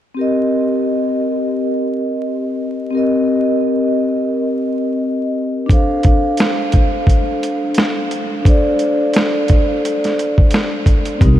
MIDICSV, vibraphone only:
0, 0, Header, 1, 2, 480
1, 0, Start_track
1, 0, Tempo, 689655
1, 122, Time_signature, 4, 2, 24, 8
1, 7932, End_track
2, 0, Start_track
2, 0, Title_t, "Vibraphone"
2, 0, Program_c, 0, 11
2, 101, Note_on_c, 0, 60, 60
2, 118, Note_on_c, 0, 67, 58
2, 132, Note_on_c, 0, 70, 54
2, 148, Note_on_c, 0, 75, 68
2, 265, Control_c, 0, 64, 127
2, 2004, Note_off_c, 0, 60, 0
2, 2012, Note_off_c, 0, 67, 0
2, 2019, Note_off_c, 0, 70, 0
2, 2022, Note_on_c, 0, 60, 68
2, 2027, Note_off_c, 0, 75, 0
2, 2039, Note_on_c, 0, 67, 54
2, 2052, Note_on_c, 0, 70, 62
2, 2069, Note_on_c, 0, 75, 69
2, 3924, Note_off_c, 0, 60, 0
2, 3933, Note_off_c, 0, 67, 0
2, 3939, Note_off_c, 0, 70, 0
2, 3941, Note_on_c, 0, 62, 68
2, 3948, Note_off_c, 0, 75, 0
2, 3956, Note_on_c, 0, 69, 60
2, 3973, Control_c, 0, 64, 0
2, 3973, Note_on_c, 0, 72, 63
2, 3988, Note_on_c, 0, 77, 66
2, 4081, Control_c, 0, 64, 127
2, 5844, Note_off_c, 0, 62, 0
2, 5851, Note_off_c, 0, 69, 0
2, 5860, Note_off_c, 0, 72, 0
2, 5860, Note_on_c, 0, 62, 61
2, 5867, Note_off_c, 0, 77, 0
2, 5877, Note_on_c, 0, 69, 58
2, 5893, Note_on_c, 0, 72, 54
2, 5908, Note_on_c, 0, 74, 65
2, 7763, Note_off_c, 0, 62, 0
2, 7772, Note_off_c, 0, 69, 0
2, 7780, Note_off_c, 0, 72, 0
2, 7780, Note_on_c, 0, 60, 74
2, 7787, Note_off_c, 0, 74, 0
2, 7796, Note_on_c, 0, 67, 65
2, 7810, Control_c, 0, 64, 0
2, 7813, Note_on_c, 0, 70, 58
2, 7828, Note_on_c, 0, 63, 72
2, 7932, Note_off_c, 0, 60, 0
2, 7932, Note_off_c, 0, 63, 0
2, 7932, Note_off_c, 0, 67, 0
2, 7932, Note_off_c, 0, 70, 0
2, 7932, End_track
0, 0, End_of_file